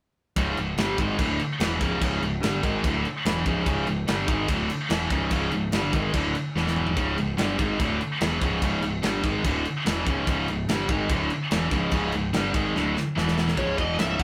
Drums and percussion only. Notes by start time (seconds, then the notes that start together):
0.36 kick, crash
0.57 crash
0.78 snare, crash
0.98 kick, crash
1.19 kick, crash
1.39 crash
1.60 snare, crash
1.81 kick, snare, crash
2.02 kick, crash
2.22 crash
2.43 snare, crash
2.63 kick, crash
2.84 kick, crash
3.05 crash
3.25 snare, crash
3.46 kick, crash
3.66 kick, crash
3.87 crash
4.08 snare, crash
4.28 kick, crash
4.48 kick, crash
4.70 crash
4.90 snare, crash
5.10 kick, snare, crash
5.31 kick, crash
5.51 crash
5.72 snare, crash
5.93 kick, crash
6.13 kick, crash
6.35 crash
6.57 snare
6.67 snare
6.76 mid tom
6.87 floor tom
6.97 kick, crash
7.18 crash
7.38 snare, crash
7.59 kick, crash
7.80 kick, crash
8.01 crash
8.21 snare, crash
8.42 kick, crash
8.62 kick, crash
8.82 crash
9.03 snare, crash
9.23 kick, crash
9.45 kick, crash
9.65 crash
9.86 snare, crash
10.07 kick, crash
10.27 kick, crash
10.48 crash
10.69 snare, crash
10.89 kick, crash
11.10 kick, crash
11.30 crash
11.51 snare, crash
11.71 kick, snare, crash
11.91 kick, crash
12.12 crash
12.33 snare, crash
12.54 kick, crash
12.76 snare
12.97 snare
13.18 snare
13.28 snare
13.38 snare
13.48 snare
13.57 kick, ride
13.78 kick, ride
13.99 snare, ride
14.20 kick, ride